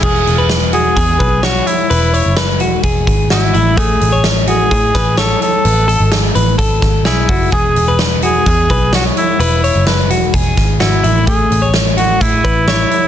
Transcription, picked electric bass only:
\new Staff \with { instrumentName = "Picked electric bass" } { \clef bass \time 4/4 \key e \major \tempo 4 = 128 e,,8 e,,4. e,8 b,,4 r8 | e,,8. fis,,8. e,,8 e,,8 gis,,8 gis,,8 a,,8~ | a,,8 a,,4. a,8 a,,4 r8 | a,,8. gis,,8. a,,8 r8 gis,,8 b,,8 fis,,8 |
e,,8 e,,4. e,8 b,,4 r8 | e,,8. fis,,8. e,,8 e,,8 gis,,8 gis,,8 a,,8~ | a,,8 a,,4. a,8 a,,4 r8 | }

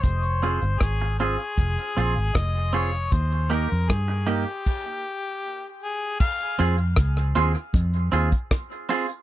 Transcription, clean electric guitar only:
\new Staff \with { instrumentName = "Clean electric guitar" } { \time 4/4 \key f \minor \tempo 4 = 78 r8 <c' f' aes'>8 r8 <c' f' aes'>8 r8 <c' f' aes'>8 r8 <c' f' aes'>8 | r8 <bes ees' g'>8 r8 <bes ees' g'>8 r2 | r8 <c' f' aes'>8 r8 <c' f' aes'>8 r8 <c' f' aes'>8 r8 <c' f' aes'>8 | }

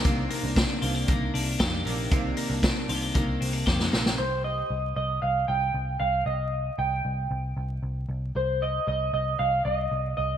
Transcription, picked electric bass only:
\new Staff \with { instrumentName = "Picked electric bass" } { \clef bass \time 4/4 \key c \minor \tempo 4 = 115 c,8 r16 c,8 r16 c,8 c,8 c,8 f,8 bes,,8 | c,8 r16 c,8 r16 c,8 c,8 c,8 f,8 bes,,8 | c,4 c,8 c,8 c,8 c,8 c,8 c,8 | c,4 c,8 c,8 c,8 c,8 c,8 c,8 |
c,4 c,8 c,8 c,8 c,8 c,8 c,8 | }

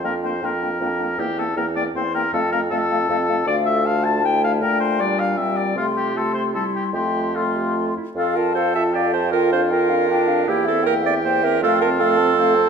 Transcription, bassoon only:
\new Staff \with { instrumentName = "Bassoon" } { \clef bass \time 3/4 \key f \major \tempo 4 = 157 f,4 f,4 f,4 | e,4 e,4 e,4 | f,4 f,4 f,4 | d,2. |
bes,2. | c2. | f,2~ f,8 r8 | f,2.~ |
f,2. | e,2. | f,2. | }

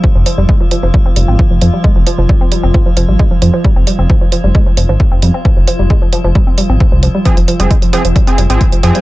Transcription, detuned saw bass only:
\new Staff \with { instrumentName = "Detuned saw bass" } { \clef bass \time 4/4 \key f \minor \tempo 4 = 133 r16 f,,16 r16 f,,16 r8. f,,16 r8 f,,16 aes,,16 r16 f,,16 f,16 r16 | r16 f,,16 r16 f,,16 r8. f,,16 r8 f,,16 aes,,16 r16 f,,16 f,16 r16 | r16 f,,16 r16 f,,16 r8. f,,16 r8 f,,16 aes,,16 r16 f,,16 f,16 r16 | r16 f,,16 r16 f,,16 r8. f,,16 r8. aes,,16 r16 c,16 r8 |
r16 f,,16 r16 f,,16 r8. f,,16 r8 f,,16 aes,,16 r16 f,,16 f,16 r16 | }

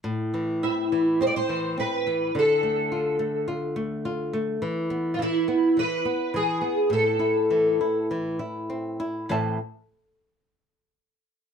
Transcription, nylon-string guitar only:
\new Staff \with { instrumentName = "Nylon-string guitar" } { \time 4/4 \key a \minor \tempo 4 = 104 a,8 e8 c'8 e8 c'8 e8 c'8 e8 | d8 a8 f'8 a8 f'8 a8 f'8 a8 | e8 b8 e8 b8 e8 b8 e8 b8 | a,8 e'8 e8 e'8 e8 e'8 c'8 e'8 |
<a, e c' a' e'' a''>8 r2. r8 | }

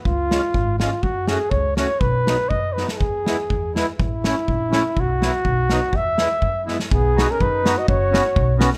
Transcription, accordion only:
\new Staff \with { instrumentName = "Accordion" } { \time 2/4 \key e \major \tempo 4 = 124 r8 <gis cis' eis'>8 r8 <gis cis' eis'>8 | r8 <a cis' fis'>8 r8 <a cis' fis'>8 | r8 <fis b dis'>8 r8 <fis b dis'>8 | r8 <gis b e'>8 r8 <gis b e'>8 |
r8 <a cis' e'>8 r8 <a cis' e'>8 | r8 <fis b e'>8 r8 <fis b dis'>8 | r8 <gis b e'>8 r8 <gis b e'>8 | \key b \major r8 <b dis' fis'>8 r8 <b dis' fis'>8 |
r8 <b cis' fis'>8 r8 <b cis' fis'>8 | }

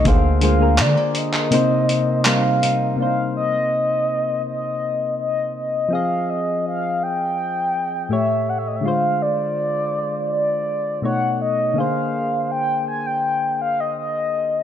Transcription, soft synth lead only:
\new Staff \with { instrumentName = "Soft synth lead" } { \time 4/4 \key c \minor \tempo 4 = 82 f''8 f''8 d''8 ees''4. f''4 | f''8 ees''4. ees''4 ees''8 ees''8 | f''8 ees''8 f''8 g''4. e''8 fis''32 e''32 ees''32 e''32 | f''8 d''4. d''4 fis''8 dis''8 |
f''4 g''8 aes''16 g''8. f''16 ees''16 ees''4 | }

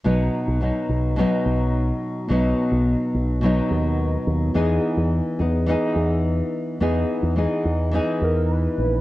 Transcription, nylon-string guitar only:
\new Staff \with { instrumentName = "Nylon-string guitar" } { \time 4/4 \key b \major \tempo 4 = 107 <b, fis b dis'>4 <b, fis b dis'>4 <b, fis b dis'>2 | <b, fis b dis'>2 <b, fis b dis'>2 | <e b dis' gis'>4. <b dis' gis'>8 <e b dis' gis'>2 | <e b dis' gis'>4 <e b dis' gis'>4 <e b dis' gis'>2 | }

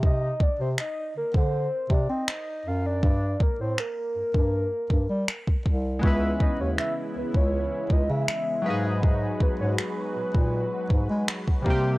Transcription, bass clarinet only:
\new Staff \with { instrumentName = "Bass clarinet" } { \clef bass \time 4/4 \key aes \major \tempo 4 = 80 c8 r16 c16 r8 d16 d8 r16 c16 c'16 r8 ges,8 | g,8 r16 a,16 r8 g,16 g,8 r16 g,16 g16 r8 c,8 | des,8 r16 ees,16 r8 des,16 des,8 r16 des,16 des16 r8 aes,8~ | aes,8 r16 aes,16 r8 bes,16 bes,8 r16 aes,16 aes16 r8 c8 | }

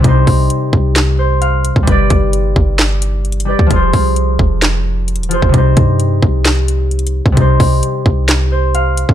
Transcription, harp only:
\new Staff \with { instrumentName = "Harp" } { \time 4/4 \key c \minor \tempo 4 = 131 << { r2 r8 c''8 f''4 | r1 | r1 | r1 |
r2 r8 c''8 f''4 | } \\ { <c g ees' c''>1 | <g g' b' d''>2.~ <g g' b' d''>8 <g g' b' d''>8 | <f f' aes' c''>2.~ <f f' aes' c''>8 <f f' aes' c''>8 | <c g ees' c''>1 |
<c g ees' c''>1 | } >> }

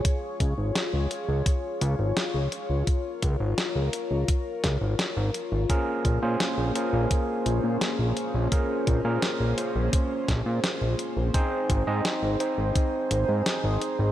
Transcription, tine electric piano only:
\new Staff \with { instrumentName = "Tine electric piano" } { \time 4/4 \key bes \minor \tempo 4 = 85 r1 | r1 | <des' f' aes' bes'>8. <des' f' aes' c''>8. <des' f' aes' bes'>2~ <des' f' aes' bes'>8 | <des' f' aes' bes'>8. <des' f' aes' bes'>8. <des' f' aes' c''>2~ <des' f' aes' c''>8 |
<c' ees' aes' c''>8. <c' ees' aes' ees''>8. <c' ees' aes' c''>2~ <c' ees' aes' c''>8 | }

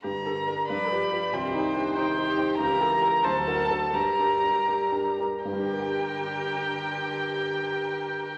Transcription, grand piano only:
\new Staff \with { instrumentName = "Grand piano" } { \time 6/8 \key g \minor \tempo 4. = 83 g,8 <d' g' bes'>8 <d' g' bes'>8 g,8 <f' g' b'>8 <f' g' b'>8 | c,8 <ees' g' c''>8 <ees' g' c''>8 <ees' g' c''>8 <ees' g' c''>8 <ees' g' c''>8 | cis,8 <e' g' ais'>8 <e' g' ais'>8 d,8 <d' fis' a'>8 <d' fis' a'>8 | g,8 <d' g' bes'>8 <d' g' bes'>8 <d' g' bes'>8 <d' g' bes'>8 <d' g' bes'>8 |
<g, g d' g' bes' g''>2.~ | <g, g d' g' bes' g''>2. | }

